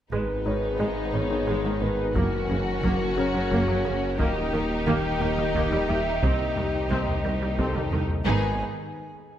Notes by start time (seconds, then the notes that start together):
0.12 G#1 G#2 D#3 G#3 B3 D#4 G#4 B4, taiko
0.46 G#1 G#2 D#3 D#4 C#5
0.80 G#1 G#2 G#3 D#5
1.13 G#1 G#2 D#3 D#4 C#5
1.31 G#2 D#3 D#4
1.47 G#1 G#2 G#3
1.65 G#2 D#3 B3
1.82 G#1 G#2 D#3 B3 B4
2.15 F#1 F#2 F#3 A#3 C#4 F#4 A#4, taiko
2.49 F#1 F#2 C#3 C#4
2.84 F#1 F#2 F#3 A#3, taiko
3.17 F#1 F#2 C#3 C#4 A#4 C#5
3.34 F#2 F#3 C#4
3.51 F#1 F#2 F#3 A#3, taiko
3.68 F#2 F#3 A#3
3.85 F#1 F#2 C#3 A#3
4.19 D#1 D#2 D#3 A#3 D#4 G4 D#5, taiko
4.53 D#2 D#3 A#3
4.87 D#2 D#3 A#3 G5, taiko
5.21 D#2 D#3 A#3 D#5
5.38 D#2 G3 A#3
5.55 D#2 D#3 A#3, taiko
5.72 D#2 G3
5.89 D#2 D#3 G3 G4 E5
6.23 C2 C3 C4 C5 D#5, taiko
6.57 C2 D#3 G3, taiko low
6.91 C2 C3 C4, taiko
7.08 taiko low
7.24 C2 D#3 G3
7.41 C2 G3
7.58 C2 C3 C4 A4, taiko
7.75 C2 D#3 G3, taiko low
7.92 C2 D#3, taiko low
8.09 taiko low
8.26 G#1 G#2 D#3 B3 D#4 G#4 B4 G#5